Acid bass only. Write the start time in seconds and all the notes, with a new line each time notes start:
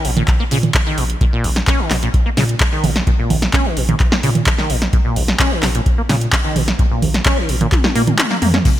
0.05 A#2
0.17 A#2
0.40 A#3
0.51 C#3
0.86 D#3
0.98 A#2
1.21 A#2
1.33 A#2
1.44 A#1
1.67 C#4
1.79 D#3
1.91 A#2
2.03 A#2
2.26 A#3
2.37 C#3
2.72 D#3
2.84 A#2
3.07 A#2
3.19 A#2
3.30 A#1
3.54 C#4
3.65 D#3
3.77 A#2
3.89 A#2
4.12 A#3
4.23 C#3
4.59 D#3
4.70 A#2
4.93 A#2
5.05 A#2
5.16 A#1
5.40 C#4
5.52 D#3
5.63 A#2
5.75 A#2
5.98 A#3
6.09 C#3
6.45 D#3
6.56 A#2
6.79 A#2
6.91 A#2
7.02 A#1
7.26 C#4
7.38 D#3
7.49 A#2
7.61 A#2
7.84 A#3
7.95 A#3
8.31 A#3
8.42 A#3
8.54 C#4
8.65 A#2